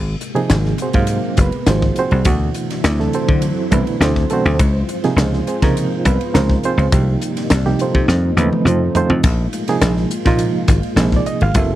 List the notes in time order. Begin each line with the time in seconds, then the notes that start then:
Already playing: G#1 C3 G#3 A#3
0.21 hi-hat pedal, ride
0.35 C3 F3 A#3 D#4 G#4, ride
0.50 G#1, snare, hi-hat pedal, ride
0.65 snare
0.78 hi-hat pedal, ride
0.82 C4 F#4 G#4 C5
0.93 G#2 C3 F#3 A#3 D#4 F5, kick, ride
1.07 hi-hat pedal, ride
1.37 F#1, kick, snare, hi-hat pedal, ride
1.41 B3 B4
1.52 ride
1.66 G#1 C3 F3 A#3 C4 D#4 F4 F#4 G#4 C5, snare, hi-hat pedal, ride
1.82 kick, snare
1.96 C4 F#4 G#4 C5, hi-hat pedal, ride
2.11 C2, ride
2.25 D2 B2 D3 E3 F#3 A3 D4 E4 F#4 C5, kick, hi-hat pedal, ride
2.54 hi-hat pedal, ride
2.70 snare, ride
2.84 D2, snare, hi-hat pedal, ride
3.00 C3 E3 A3 D4 A4, snare
3.13 C4 F#4 A4 C5, hi-hat pedal, ride
3.28 D3, kick
3.42 hi-hat pedal, ride
3.71 C2 B2 E3 A3 B3 D4 E4 B4, kick, hi-hat pedal, ride
3.87 ride
4.00 D2 C4 A4 C5, snare, hi-hat pedal, ride
4.05 F#4
4.16 kick, snare
4.30 B2 E3 A3 C4 D4 F#4 A4 C5, hi-hat pedal, ride
4.45 D2, ride
4.59 C#2 G#3 F4, kick, hi-hat pedal, ride
4.89 hi-hat pedal, ride
5.04 C3 F3 A#3 D#4 G#4, snare, ride
5.16 C#2, snare, hi-hat pedal, ride
5.33 snare
5.47 C4 F4 G#4 C5, hi-hat pedal, ride
5.62 C3 C#3 F3 A#3 D#4 A#4, kick, snare, ride
5.77 hi-hat pedal, ride
6.05 C2 B3 B4, kick, hi-hat pedal, ride
6.21 ride
6.34 C#2 C3 F3 A#3 C4 D#4 F4 G#4 A#4 C5, snare, hi-hat pedal, ride
6.50 kick, snare
6.63 C4 F4 G#4 C5, hi-hat pedal, ride
6.77 C#2, ride
6.92 C2 C3 F3 G3 A#3 D#4 G4, kick, hi-hat pedal, ride
7.21 hi-hat pedal, ride
7.37 snare, ride
7.50 C2, snare, hi-hat pedal, ride
7.65 C3 F3 A#3 D#4 G4, snare
7.79 C4 F4 A4 C5, hi-hat pedal, ride
7.95 C3, kick
8.08 F2 F3 A3, snare, hi-hat pedal
8.37 D#2 C#3 F3 A3 B3 C4 D#4 B4, hi-hat pedal, high tom
8.53 high tom
8.65 F2 C4 A4 C5, hi-hat pedal, mid tom
8.69 F4
8.95 C#3 F3 A3 C4 D#4 F4 A4 C5, floor tom, hi-hat pedal
9.10 F2, floor tom
9.23 A#1 G#3 A#3 F4, kick, hi-hat pedal, ride, splash
9.53 hi-hat pedal, ride
9.68 C3 F3 A#3 D#4 G#4, snare, ride
9.81 A#1, snare, hi-hat pedal, ride
9.97 snare
10.11 hi-hat pedal, ride
10.25 A#2 C3 F3 A#3 D#4 F4, kick, snare, ride
10.39 hi-hat pedal, ride
10.68 G#1, kick, snare, hi-hat pedal, ride
10.83 ride
10.96 A#1 C3 F3 A#3 D#4 G#4, snare, hi-hat pedal, ride
11.12 kick, snare
11.16 D5
11.26 D#5, hi-hat pedal, ride
11.41 G#1 F5, ride
11.54 F#1 C#3 F#3 B3 C#4 E4 A4 E5, kick, hi-hat pedal, ride